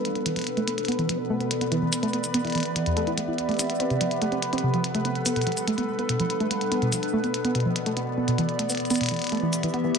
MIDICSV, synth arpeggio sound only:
0, 0, Header, 1, 2, 480
1, 0, Start_track
1, 0, Tempo, 416667
1, 59, Time_signature, 4, 2, 24, 8
1, 11500, End_track
2, 0, Start_track
2, 0, Title_t, "Synth arpeggio sound"
2, 0, Program_c, 0, 84
2, 178, Note_on_c, 0, 59, 90
2, 263, Note_off_c, 0, 59, 0
2, 297, Note_on_c, 0, 52, 93
2, 383, Note_off_c, 0, 52, 0
2, 417, Note_on_c, 0, 53, 73
2, 503, Note_off_c, 0, 53, 0
2, 657, Note_on_c, 0, 57, 93
2, 709, Note_off_c, 0, 57, 0
2, 778, Note_on_c, 0, 59, 72
2, 829, Note_off_c, 0, 59, 0
2, 1018, Note_on_c, 0, 59, 92
2, 1103, Note_off_c, 0, 59, 0
2, 1138, Note_on_c, 0, 52, 93
2, 1223, Note_off_c, 0, 52, 0
2, 1257, Note_on_c, 0, 53, 74
2, 1343, Note_off_c, 0, 53, 0
2, 1497, Note_on_c, 0, 57, 101
2, 1549, Note_off_c, 0, 57, 0
2, 1618, Note_on_c, 0, 59, 72
2, 1669, Note_off_c, 0, 59, 0
2, 1858, Note_on_c, 0, 59, 95
2, 1943, Note_off_c, 0, 59, 0
2, 1977, Note_on_c, 0, 52, 93
2, 2063, Note_off_c, 0, 52, 0
2, 2097, Note_on_c, 0, 52, 72
2, 2183, Note_off_c, 0, 52, 0
2, 2337, Note_on_c, 0, 57, 97
2, 2389, Note_off_c, 0, 57, 0
2, 2458, Note_on_c, 0, 59, 78
2, 2509, Note_off_c, 0, 59, 0
2, 2698, Note_on_c, 0, 59, 100
2, 2783, Note_off_c, 0, 59, 0
2, 2818, Note_on_c, 0, 52, 96
2, 2903, Note_off_c, 0, 52, 0
2, 2937, Note_on_c, 0, 52, 76
2, 3023, Note_off_c, 0, 52, 0
2, 3177, Note_on_c, 0, 52, 72
2, 3229, Note_off_c, 0, 52, 0
2, 3298, Note_on_c, 0, 40, 75
2, 3412, Note_off_c, 0, 40, 0
2, 3418, Note_on_c, 0, 57, 102
2, 3532, Note_off_c, 0, 57, 0
2, 3538, Note_on_c, 0, 64, 68
2, 3652, Note_off_c, 0, 64, 0
2, 3657, Note_on_c, 0, 57, 67
2, 3743, Note_off_c, 0, 57, 0
2, 3778, Note_on_c, 0, 64, 70
2, 3863, Note_off_c, 0, 64, 0
2, 4018, Note_on_c, 0, 57, 93
2, 4069, Note_off_c, 0, 57, 0
2, 4138, Note_on_c, 0, 60, 70
2, 4189, Note_off_c, 0, 60, 0
2, 4378, Note_on_c, 0, 60, 93
2, 4463, Note_off_c, 0, 60, 0
2, 4499, Note_on_c, 0, 48, 70
2, 4583, Note_off_c, 0, 48, 0
2, 4619, Note_on_c, 0, 53, 74
2, 4703, Note_off_c, 0, 53, 0
2, 4859, Note_on_c, 0, 57, 93
2, 4909, Note_off_c, 0, 57, 0
2, 4979, Note_on_c, 0, 60, 73
2, 5029, Note_off_c, 0, 60, 0
2, 5218, Note_on_c, 0, 60, 98
2, 5303, Note_off_c, 0, 60, 0
2, 5339, Note_on_c, 0, 48, 80
2, 5423, Note_off_c, 0, 48, 0
2, 5459, Note_on_c, 0, 53, 70
2, 5544, Note_off_c, 0, 53, 0
2, 5698, Note_on_c, 0, 57, 93
2, 5749, Note_off_c, 0, 57, 0
2, 5819, Note_on_c, 0, 59, 81
2, 5869, Note_off_c, 0, 59, 0
2, 6058, Note_on_c, 0, 59, 98
2, 6143, Note_off_c, 0, 59, 0
2, 6179, Note_on_c, 0, 47, 74
2, 6263, Note_off_c, 0, 47, 0
2, 6299, Note_on_c, 0, 53, 79
2, 6383, Note_off_c, 0, 53, 0
2, 6538, Note_on_c, 0, 57, 94
2, 6589, Note_off_c, 0, 57, 0
2, 6658, Note_on_c, 0, 59, 77
2, 6709, Note_off_c, 0, 59, 0
2, 6898, Note_on_c, 0, 59, 90
2, 6983, Note_off_c, 0, 59, 0
2, 7018, Note_on_c, 0, 47, 72
2, 7103, Note_off_c, 0, 47, 0
2, 7138, Note_on_c, 0, 53, 73
2, 7223, Note_off_c, 0, 53, 0
2, 7378, Note_on_c, 0, 57, 95
2, 7429, Note_off_c, 0, 57, 0
2, 7498, Note_on_c, 0, 59, 67
2, 7549, Note_off_c, 0, 59, 0
2, 7738, Note_on_c, 0, 59, 100
2, 7823, Note_off_c, 0, 59, 0
2, 7858, Note_on_c, 0, 47, 69
2, 7943, Note_off_c, 0, 47, 0
2, 7978, Note_on_c, 0, 53, 75
2, 8063, Note_off_c, 0, 53, 0
2, 8218, Note_on_c, 0, 57, 99
2, 8269, Note_off_c, 0, 57, 0
2, 8338, Note_on_c, 0, 59, 71
2, 8389, Note_off_c, 0, 59, 0
2, 8578, Note_on_c, 0, 59, 96
2, 8663, Note_off_c, 0, 59, 0
2, 8699, Note_on_c, 0, 47, 76
2, 8783, Note_off_c, 0, 47, 0
2, 8818, Note_on_c, 0, 53, 69
2, 8903, Note_off_c, 0, 53, 0
2, 9059, Note_on_c, 0, 57, 99
2, 9110, Note_off_c, 0, 57, 0
2, 9178, Note_on_c, 0, 59, 83
2, 9229, Note_off_c, 0, 59, 0
2, 9419, Note_on_c, 0, 59, 91
2, 9503, Note_off_c, 0, 59, 0
2, 9539, Note_on_c, 0, 47, 73
2, 9623, Note_off_c, 0, 47, 0
2, 9658, Note_on_c, 0, 52, 79
2, 9743, Note_off_c, 0, 52, 0
2, 9899, Note_on_c, 0, 57, 95
2, 9949, Note_off_c, 0, 57, 0
2, 10018, Note_on_c, 0, 59, 77
2, 10069, Note_off_c, 0, 59, 0
2, 10258, Note_on_c, 0, 59, 96
2, 10343, Note_off_c, 0, 59, 0
2, 10378, Note_on_c, 0, 47, 76
2, 10463, Note_off_c, 0, 47, 0
2, 10498, Note_on_c, 0, 52, 72
2, 10583, Note_off_c, 0, 52, 0
2, 10738, Note_on_c, 0, 57, 95
2, 10789, Note_off_c, 0, 57, 0
2, 10858, Note_on_c, 0, 52, 73
2, 10909, Note_off_c, 0, 52, 0
2, 11098, Note_on_c, 0, 52, 85
2, 11149, Note_off_c, 0, 52, 0
2, 11218, Note_on_c, 0, 59, 95
2, 11303, Note_off_c, 0, 59, 0
2, 11338, Note_on_c, 0, 52, 92
2, 11423, Note_off_c, 0, 52, 0
2, 11500, End_track
0, 0, End_of_file